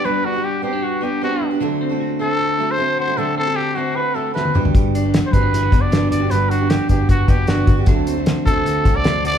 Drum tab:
HH |----------------|----------------|----------------|x-x-x-x-x-x-x-x-|
SD |----------------|----------------|------------o---|----o---o---o---|
T1 |----------------|----------------|-------------o--|----------------|
T2 |----------------|----------------|--------------o-|----------------|
FT |----------------|----------------|---------------o|----------------|
BD |----------------|----------------|----------------|o-----o---o-----|

HH |x-x-x-x-x-x-x-x-|x-x-x-x-x-x-x-x-|
SD |----o-------o---|----o-------o---|
T1 |----------------|----------------|
T2 |----------------|----------------|
FT |----------------|----------------|
BD |------o-o-o---o-|o-----o---o-----|